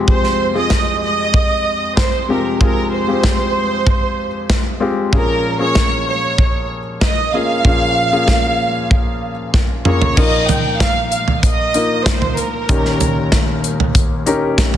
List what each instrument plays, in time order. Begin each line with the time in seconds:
Already playing: grand piano F2 C3 G#3 C4 F4 G4
0.08 violin section C5, kick
0.24 snare
0.54 grand piano G#3 C4 F4 G#4, violin section D#5
0.70 kick, snare
1.04 violin section D#5
1.34 kick
1.97 violin section C5, kick, snare
2.28 grand piano F2 C3 G#3 C4 F4 G4, violin section A#4
2.60 grand piano G#3 C4 F4 G#4, violin section A#4, kick
2.94 violin section C5
3.08 grand piano G#3 C4 F4 G4
3.24 kick, snare
3.87 kick
4.50 kick, snare
4.80 grand piano G#3 C4 F4 G4
5.12 grand piano A#2 F3 A#3 C#4 F4 G#4, violin section A#4, kick
5.59 grand piano A#3 C#4 F4 G#4, violin section C#5
5.75 kick, snare
6.09 violin section C#5
6.38 kick
7.01 violin section D#5, kick, snare
7.33 grand piano A#3 C#4 F4 G#4, violin section F5
7.64 grand piano A#2 F3 A#3 C#4 F4 G#4, kick
8.12 grand piano A#3 C#4 F4 G#4
8.28 kick, snare
8.91 kick
9.54 kick, snare
9.85 grand piano A#3 C#4 F4 G#4, violin section C#5, mid tom
10.02 floor tom
10.16 grand piano A#2 F3 A#3 D#4 F4 A#4, violin section D#5, kick, crash
10.49 violin section G5, closed hi-hat, floor tom
10.78 violin section F5, kick, snare, closed hi-hat
11.10 violin section F5, closed hi-hat
11.28 floor tom
11.42 violin section D#5, kick, closed hi-hat
11.74 grand piano A#3 D#4 F4 A#4, closed hi-hat
12.05 violin section C5, kick, snare, closed hi-hat
12.22 floor tom
12.37 violin section A#4, closed hi-hat
12.69 grand piano D#2 A#2 C#4 D#4 G4 A#4, kick, closed hi-hat
12.85 snare
13.00 closed hi-hat, floor tom
13.32 kick, snare, closed hi-hat
13.64 closed hi-hat
13.80 floor tom
13.95 kick, closed hi-hat
14.26 grand piano C#4 D#4 G4 A#4, closed hi-hat
14.58 kick, snare, closed hi-hat
14.74 floor tom